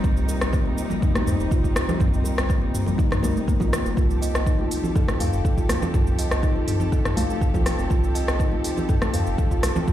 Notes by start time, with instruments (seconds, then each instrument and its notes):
Already playing: string section C3 G3 D#4
0.04 analog synth bass C2, kalimba C4, string section C4, kick, shaker
0.17 shaker
0.28 kalimba A#4, shaker
0.41 cross-stick, shaker
0.53 kalimba A#3, kick, shaker
0.66 kalimba C4, high conga
0.78 shaker
0.90 kalimba G3, low conga, shaker
1.02 kalimba D#4, kick, mid tom, shaker
1.15 cross-stick, high conga, shaker
1.26 analog synth bass D#2, kalimba C5, mid tom, shaker
1.39 analog synth bass G1, shaker
1.51 kalimba F4, kick, shaker
1.64 kalimba C4, kick, shaker
1.76 analog synth bass C2, cross-stick, high conga, shaker
1.88 kalimba G3, low conga, shaker
2.00 analog synth bass C2, kalimba C4, kick, mid tom, shaker
2.14 shaker
2.24 kalimba A#4, shaker
2.38 cross-stick, shaker
2.49 kalimba A#3, kick, shaker
2.62 kalimba C4
2.74 mid tom, shaker
2.86 kalimba G3, low conga, shaker
2.98 kalimba D#4, kick, shaker
3.11 cross-stick, mid tom, low conga, shaker
3.23 analog synth bass C2, kalimba A#4, high conga, shaker
3.36 high conga, shaker
3.47 kalimba A#3, kick, shaker
3.60 analog synth bass A#1, kalimba F4, kick, low conga, shaker
3.73 cross-stick, shaker
3.84 analog synth bass G1, kalimba A#3, high conga, shaker
3.97 analog synth bass C2, string section F3 C4 G4 A4, kalimba F4, kick, shaker
4.10 shaker
4.22 kalimba D#5, open hi-hat, shaker
4.35 cross-stick, shaker
4.46 kalimba D#4, kick, shaker
4.59 kalimba F4, high conga
4.71 open hi-hat, shaker
4.83 kalimba C4, low conga, shaker
4.96 kalimba A4, kick, mid tom, shaker
5.08 cross-stick, high conga, shaker
5.20 analog synth bass D#2, kalimba F5, mid tom, open hi-hat, shaker
5.33 analog synth bass G1, shaker
5.45 kalimba A4, kick, shaker
5.58 kalimba F4, kick, shaker
5.69 analog synth bass C2, cross-stick, open hi-hat, high conga, shaker
5.82 kalimba C4, low conga, shaker
5.94 analog synth bass C2, kalimba F4, kick, mid tom, shaker
6.07 shaker
6.19 kalimba D#5, open hi-hat, shaker
6.31 cross-stick, shaker
6.43 kalimba D#4, kick, shaker
6.56 kalimba F4
6.68 mid tom, open hi-hat, shaker
6.80 kalimba C4, low conga, shaker
6.92 kalimba A4, kick, shaker
7.05 cross-stick, mid tom, shaker
7.17 analog synth bass C2, kalimba F5, open hi-hat, high conga, shaker
7.29 high conga, shaker
7.41 kalimba A4, kick, shaker
7.54 analog synth bass C2, kalimba F4, kick, low conga, shaker
7.66 cross-stick, open hi-hat, shaker
7.79 analog synth bass G1, kalimba C4, high conga, shaker
7.90 analog synth bass C2, kalimba F4, kick, shaker
8.04 shaker
8.15 kalimba D#5, open hi-hat, shaker
8.28 cross-stick, shaker
8.39 kalimba D#4, kick, shaker
8.52 kalimba F4, high conga
8.64 open hi-hat, shaker
8.77 kalimba C4, low conga, shaker
8.89 kalimba A4, kick, mid tom, shaker
9.02 cross-stick, high conga, shaker
9.14 analog synth bass D#2, kalimba F5, mid tom, open hi-hat, shaker
9.27 analog synth bass G1, shaker
9.38 kalimba A4, kick, shaker
9.51 kalimba F4, kick, shaker
9.63 analog synth bass C2, cross-stick, open hi-hat, high conga, shaker
9.76 kalimba C4, low conga, shaker
9.87 analog synth bass C2, kalimba F4, kick, mid tom, shaker